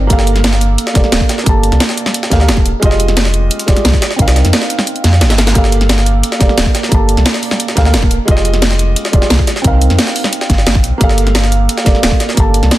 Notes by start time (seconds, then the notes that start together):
Already playing: C4 D#4 A#4 D5 F5
0.07 G1 A#3 G4 A4, kick, closed hi-hat
0.13 F5
0.19 snare
0.27 closed hi-hat
0.36 snare, closed hi-hat
0.44 snare, closed hi-hat
0.53 snare, closed hi-hat
0.61 closed hi-hat
0.78 closed hi-hat
0.87 snare, closed hi-hat
0.94 F1 A#3 G4 A4 D5, kick, snare, closed hi-hat
1.04 snare
1.12 D1, snare, closed hi-hat
1.21 kick
1.29 snare, closed hi-hat
1.38 snare
1.44 G1 A#3 G4 A4, kick, closed hi-hat
1.49 A5
1.63 closed hi-hat
1.72 C2, snare, closed hi-hat
1.80 snare, closed hi-hat
1.89 snare, closed hi-hat
1.98 closed hi-hat
2.06 snare
2.14 closed hi-hat
2.23 snare, closed hi-hat
2.30 D2 A#3 G4 A4 F5, kick, snare, closed hi-hat
2.39 A#3 G4 A4 F5, snare
2.48 D1, snare, closed hi-hat
2.57 kick
2.66 F1, closed hi-hat
2.80 F1 G#3 F4 G4, kick, closed hi-hat
2.85 D#5
2.91 snare
3.00 closed hi-hat
3.08 snare, closed hi-hat
3.17 snare, closed hi-hat
3.25 snare, closed hi-hat
3.34 closed hi-hat
3.51 closed hi-hat
3.59 closed hi-hat
3.66 D#1 G#3 F4 G4 D5, kick, snare, closed hi-hat
3.76 snare, closed hi-hat
3.85 C2, snare, closed hi-hat
3.93 kick, snare
4.02 snare, closed hi-hat
4.11 snare
4.16 C2 C4 D#4 A#4, kick, closed hi-hat
4.22 F5
4.28 snare, closed hi-hat
4.36 snare, closed hi-hat
4.45 F2, snare, closed hi-hat
4.53 snare, closed hi-hat
4.62 snare, closed hi-hat
4.70 closed hi-hat
4.79 snare
4.87 closed hi-hat
4.96 closed hi-hat
5.04 F2, snare, closed hi-hat
5.13 snare
5.21 G1, snare, closed hi-hat
5.30 snare, closed hi-hat
5.38 snare, closed hi-hat
5.47 snare, closed hi-hat
5.53 G1 A#3 G4 A4, kick, closed hi-hat
5.58 F5
5.64 snare
5.72 closed hi-hat
5.81 snare, closed hi-hat
5.89 snare, closed hi-hat
5.98 snare, closed hi-hat
6.06 closed hi-hat
6.23 closed hi-hat
6.32 snare, closed hi-hat
6.39 F1 A#3 G4 A4 D5, kick, snare, closed hi-hat
6.49 snare
6.58 D1, snare, closed hi-hat
6.66 kick
6.75 snare, closed hi-hat
6.83 snare
6.89 G1 A#3 G4 A4, kick, closed hi-hat
6.94 A5
7.09 closed hi-hat
7.17 C2, snare, closed hi-hat
7.26 snare, closed hi-hat
7.34 snare, closed hi-hat
7.43 closed hi-hat, open hi-hat
7.51 snare
7.60 closed hi-hat
7.68 snare, closed hi-hat
7.75 D2 A#3 G4 A4 F5, kick, snare, closed hi-hat
7.84 A#3 G4 A4 F5, snare
7.94 D1, snare, closed hi-hat
8.03 kick
8.11 F1, closed hi-hat
8.25 F1 G#3 F4 G4, kick, closed hi-hat
8.31 D#5
8.37 snare
8.45 closed hi-hat
8.54 snare, closed hi-hat
8.62 snare, closed hi-hat
8.71 snare, closed hi-hat
8.79 closed hi-hat
8.96 closed hi-hat
9.05 snare, closed hi-hat
9.12 D#1 G#3 F4 G4 D5, kick, closed hi-hat
9.22 snare
9.30 C2, snare, closed hi-hat
9.39 kick
9.47 snare, closed hi-hat
9.56 snare
9.62 C2 C4 D#4 A#4, kick, closed hi-hat
9.67 F5
9.81 closed hi-hat
9.90 F2, snare, closed hi-hat
9.99 snare, closed hi-hat
10.07 snare, closed hi-hat
10.16 closed hi-hat, open hi-hat
10.24 snare
10.33 closed hi-hat
10.41 snare, closed hi-hat
10.50 G1, kick, snare, closed hi-hat
10.58 snare
10.67 G1, snare, closed hi-hat
10.75 kick
10.84 C2, closed hi-hat
10.98 G1 A#3 G4 A4, kick, closed hi-hat
11.03 F5
11.09 snare
11.18 closed hi-hat
11.27 snare, closed hi-hat
11.35 snare, closed hi-hat
11.44 snare, closed hi-hat
11.52 closed hi-hat
11.69 closed hi-hat
11.78 snare, closed hi-hat
11.85 F1 A#3 G4 A4 D5, kick, snare, closed hi-hat
11.95 snare
12.03 D1, snare, closed hi-hat
12.12 kick
12.20 snare, closed hi-hat
12.29 snare
12.34 G1 A#3 G4 A4, kick, closed hi-hat
12.40 A5
12.54 closed hi-hat
12.63 C2, snare, closed hi-hat
12.71 snare, closed hi-hat